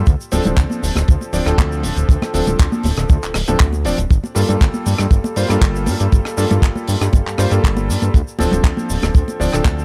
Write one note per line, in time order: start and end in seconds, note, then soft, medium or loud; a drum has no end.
0.07 0.15 D2 loud
0.07 kick loud
0.07 closed hi-hat medium
0.07 shaker medium
0.21 shaker soft
0.32 0.40 D1 loud
0.32 0.42 F3 medium
0.32 0.42 C4 medium
0.32 0.42 D4 medium
0.32 0.43 A4 loud
0.32 open hi-hat loud
0.32 muted conga medium
0.32 shaker medium
0.44 0.53 D1 medium
0.44 1.30 F3 medium
0.44 1.31 C4 medium
0.44 1.31 D4 medium
0.44 1.31 A4 medium
0.44 closed hi-hat medium
0.44 low conga medium
0.44 shaker soft
0.57 0.65 D2 medium
0.57 kick loud
0.57 clap loud
0.57 closed hi-hat medium
0.57 muted conga medium
0.57 shaker medium
0.70 high conga medium
0.70 shaker soft
0.82 0.91 D1 medium
0.82 open hi-hat loud
0.82 shaker medium
0.95 1.03 D1 loud
0.95 cross-stick medium
0.95 closed hi-hat medium
0.95 muted conga medium
0.95 shaker medium
1.08 1.16 D2 loud
1.08 kick loud
1.08 closed hi-hat medium
1.08 shaker medium
1.21 muted conga soft
1.21 shaker soft
1.33 1.41 D1 medium
1.33 1.43 F3 medium
1.33 1.44 C4 medium
1.33 1.44 D4 medium
1.33 1.44 D5 loud
1.33 open hi-hat loud
1.33 shaker medium
1.46 1.54 D1 loud
1.46 2.31 F3 medium
1.46 2.31 C4 medium
1.46 2.32 D4 medium
1.46 2.32 A4 loud
1.46 cross-stick medium
1.46 closed hi-hat medium
1.46 shaker soft
1.58 1.85 D2 medium
1.58 kick loud
1.58 clap loud
1.58 closed hi-hat medium
1.58 muted conga medium
1.58 shaker medium
1.72 shaker soft
1.83 1.92 D1 medium
1.83 open hi-hat loud
1.83 muted conga medium
1.83 shaker medium
1.97 2.04 D1 medium
1.97 closed hi-hat medium
1.97 shaker soft
2.09 2.17 D2 loud
2.09 kick loud
2.09 closed hi-hat medium
2.09 shaker medium
2.22 cross-stick medium
2.22 muted conga medium
2.22 high conga medium
2.22 shaker soft
2.34 2.42 D1 loud
2.34 2.44 F3 medium
2.34 2.44 C4 medium
2.34 2.44 D4 medium
2.34 2.44 A4 loud
2.34 open hi-hat loud
2.34 shaker medium
2.47 2.54 D1 medium
2.47 3.32 F3 medium
2.47 3.33 C4 medium
2.47 3.33 D4 medium
2.47 3.33 A4 medium
2.47 closed hi-hat medium
2.47 muted conga soft
2.47 low conga medium
2.47 shaker medium
2.59 2.67 D2 medium
2.59 kick loud
2.59 clap loud
2.59 closed hi-hat medium
2.59 shaker medium
2.72 high conga medium
2.72 shaker soft
2.83 2.92 D1 medium
2.83 open hi-hat loud
2.83 muted conga medium
2.83 shaker medium
2.97 3.05 D1 loud
2.97 cross-stick medium
2.97 closed hi-hat medium
2.97 shaker soft
3.10 3.18 D2 loud
3.10 kick loud
3.10 closed hi-hat medium
3.10 muted conga soft
3.10 shaker medium
3.23 3.33 D1 soft
3.23 clap soft
3.23 shaker soft
3.34 3.43 D1 medium
3.34 cross-stick medium
3.34 open hi-hat loud
3.34 shaker medium
3.48 3.55 D1 loud
3.48 3.64 F3 medium
3.48 3.64 C4 medium
3.48 3.64 D4 medium
3.48 3.64 A4 loud
3.48 closed hi-hat medium
3.48 muted conga medium
3.48 shaker medium
3.60 3.87 D2 medium
3.60 kick loud
3.60 clap loud
3.60 closed hi-hat medium
3.60 shaker medium
3.72 muted conga soft
3.72 shaker soft
3.85 3.93 D1 medium
3.85 3.96 F3 medium
3.85 3.96 C4 medium
3.85 3.96 D4 medium
3.85 3.96 D5 loud
3.85 open hi-hat loud
3.85 shaker medium
3.98 4.06 D1 medium
3.98 closed hi-hat medium
3.98 shaker soft
4.11 4.19 G1 loud
4.11 kick loud
4.11 closed hi-hat medium
4.11 shaker medium
4.24 muted conga medium
4.24 shaker soft
4.35 4.44 G2 loud
4.35 4.45 G3 medium
4.35 4.45 A#3 medium
4.35 4.46 F4 medium
4.35 4.46 A4 loud
4.35 open hi-hat loud
4.35 shaker loud
4.48 4.56 G2 medium
4.48 5.34 G3 medium
4.48 5.34 A#3 medium
4.48 5.34 F4 medium
4.48 5.35 A4 medium
4.48 closed hi-hat medium
4.48 low conga medium
4.48 shaker soft
4.61 4.69 G1 medium
4.61 kick loud
4.61 clap loud
4.61 closed hi-hat medium
4.61 muted conga medium
4.61 shaker medium
4.74 high conga medium
4.74 shaker soft
4.86 4.94 G2 medium
4.86 open hi-hat loud
4.86 muted conga soft
4.86 shaker medium
4.98 5.07 G2 loud
4.98 cross-stick medium
4.98 closed hi-hat medium
4.98 shaker medium
5.11 5.19 G1 loud
5.11 kick loud
5.11 closed hi-hat medium
5.11 shaker medium
5.24 muted conga medium
5.24 shaker soft
5.36 5.45 G2 medium
5.36 5.47 G3 medium
5.36 5.47 A#3 medium
5.36 5.47 F4 medium
5.36 5.47 C5 medium
5.36 open hi-hat loud
5.36 shaker medium
5.48 5.57 G2 loud
5.48 6.34 G3 medium
5.48 6.34 A#3 medium
5.48 6.34 F4 medium
5.48 6.35 A4 loud
5.48 cross-stick medium
5.48 closed hi-hat medium
5.48 muted conga soft
5.48 shaker medium
5.61 5.89 G1 medium
5.61 kick loud
5.61 clap loud
5.61 closed hi-hat medium
5.61 shaker medium
5.76 shaker soft
5.86 5.95 G2 medium
5.86 open hi-hat loud
5.86 muted conga medium
5.86 shaker medium
6.00 6.08 G2 medium
6.00 closed hi-hat medium
6.00 shaker medium
6.12 6.21 G1 loud
6.12 kick loud
6.12 closed hi-hat medium
6.12 muted conga soft
6.12 shaker medium
6.25 cross-stick medium
6.25 shaker soft
6.37 6.46 G2 loud
6.37 6.47 G3 medium
6.37 6.47 A#3 medium
6.37 6.48 F4 medium
6.37 6.48 A4 loud
6.37 open hi-hat loud
6.37 shaker medium
6.49 6.58 G2 medium
6.49 7.35 G3 medium
6.49 7.36 A#3 medium
6.49 7.36 F4 medium
6.49 7.36 A4 medium
6.49 closed hi-hat medium
6.49 muted conga medium
6.49 low conga medium
6.49 shaker medium
6.62 6.70 G1 medium
6.62 kick loud
6.62 clap loud
6.62 closed hi-hat medium
6.62 shaker medium
6.75 muted conga medium
6.75 high conga medium
6.75 shaker soft
6.88 6.96 G2 medium
6.88 open hi-hat loud
6.88 shaker loud
7.01 7.09 G2 loud
7.01 cross-stick medium
7.01 closed hi-hat medium
7.01 shaker medium
7.13 7.21 G1 loud
7.13 kick loud
7.13 closed hi-hat medium
7.13 muted conga medium
7.13 shaker medium
7.27 7.36 G2 soft
7.27 clap soft
7.27 shaker soft
7.38 7.46 G2 medium
7.38 7.48 G3 medium
7.38 7.49 A#3 medium
7.38 7.49 F4 medium
7.38 7.49 C5 loud
7.38 cross-stick medium
7.38 open hi-hat loud
7.38 muted conga soft
7.38 shaker medium
7.50 7.59 G2 loud
7.50 8.12 G3 medium
7.50 8.12 A#3 medium
7.50 8.12 F4 medium
7.50 8.13 A4 loud
7.50 closed hi-hat medium
7.50 shaker medium
7.64 7.91 G1 medium
7.64 kick loud
7.64 clap loud
7.64 closed hi-hat medium
7.64 shaker medium
7.77 muted conga medium
7.77 shaker soft
7.89 7.97 G2 medium
7.89 open hi-hat loud
7.89 shaker medium
8.02 8.09 G2 medium
8.02 closed hi-hat medium
8.02 muted conga medium
8.02 shaker soft
8.14 8.22 D2 loud
8.14 kick loud
8.14 closed hi-hat medium
8.14 shaker medium
8.28 shaker soft
8.39 8.47 D1 loud
8.39 8.49 F3 medium
8.39 8.49 C4 medium
8.39 8.49 D4 medium
8.39 8.49 A4 loud
8.39 open hi-hat loud
8.39 muted conga medium
8.39 shaker medium
8.51 8.60 D1 medium
8.51 9.37 F3 medium
8.51 9.37 C4 medium
8.51 9.38 D4 medium
8.51 9.38 A4 medium
8.51 closed hi-hat medium
8.51 low conga loud
8.51 shaker medium
8.64 8.72 D2 medium
8.64 kick loud
8.64 clap loud
8.64 closed hi-hat medium
8.64 muted conga soft
8.64 shaker medium
8.77 high conga medium
8.77 shaker soft
8.90 8.98 D1 medium
8.90 open hi-hat loud
8.90 shaker loud
9.02 9.10 D1 loud
9.02 cross-stick medium
9.02 closed hi-hat medium
9.02 muted conga medium
9.02 shaker soft
9.15 9.23 D2 loud
9.15 kick loud
9.15 closed hi-hat medium
9.15 shaker medium
9.28 muted conga medium
9.28 shaker soft
9.40 9.48 D1 medium
9.40 9.50 F3 medium
9.40 9.50 C4 medium
9.40 9.51 D4 medium
9.40 9.51 D5 loud
9.40 open hi-hat loud
9.40 shaker medium
9.52 9.61 D1 loud
9.52 9.85 F3 medium
9.52 9.85 C4 medium
9.52 9.85 D4 medium
9.52 9.85 A4 loud
9.52 cross-stick medium
9.52 closed hi-hat medium
9.52 shaker medium
9.65 9.85 D2 medium
9.65 kick loud
9.65 clap loud
9.65 closed hi-hat medium
9.65 muted conga medium
9.65 shaker medium
9.79 shaker soft